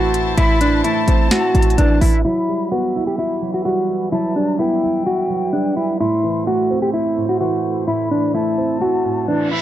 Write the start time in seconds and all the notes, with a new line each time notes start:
Already playing: A1 A2 E3 A3 C4 E4 F#4 C5 A5
0.14 closed hi-hat
0.37 A1 A2 E4 B5, closed hi-hat
0.61 E3 D4, closed hi-hat
0.84 A3 E4 A5, closed hi-hat
1.08 A1 C4, closed hi-hat
1.31 E4 F#4, finger snap, snare, closed hi-hat
1.55 A1 A2, closed hi-hat
1.62 closed hi-hat
1.70 closed hi-hat
1.78 A1 E3 D4, closed hi-hat
2.01 A1 E4 E5, open hi-hat
2.25 E3 F#3 E4 E5 B5
2.49 G3
2.72 B3 F#4
2.95 E4
3.07 G4
3.19 E4 F#4
3.42 F#3
3.54 F#4
3.65 G3 F#4
4.12 F#3 E4 E5 A5
4.36 G3 D4
4.59 B3 E4 G5
4.83 E4
5.06 F#4
5.30 F#3
5.53 G3 D4
5.77 E4
6.00 A2 A3 E4 C5 C6
6.24 E3
6.47 A3 F#4
6.70 C4
6.82 G4
6.94 E4
7.17 A2
7.29 F#4
7.41 E3 F#4
7.87 A2 E4 B5
8.11 E3 D4
8.34 A3 E4 A5
8.58 C4
8.81 E4 F#4, reverse cymbal
9.05 A2
9.28 E3 D4
9.51 E4 E5